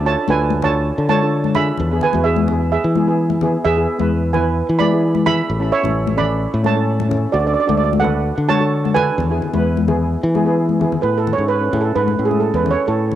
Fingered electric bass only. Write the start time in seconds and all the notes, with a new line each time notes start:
Already playing: D2
0.28 D2
0.98 D3
1.80 E2
2.14 E2
2.84 E3
3.65 E2
3.99 E2
4.69 E3
5.50 A1
5.84 A1
6.54 A2
7.34 D2
7.69 D2
8.38 D3
9.18 E2
9.54 E2
10.23 E3
11.03 A2
11.38 G#2
11.73 A2
11.96 G#2
12.19 A2
12.54 E2
12.88 A2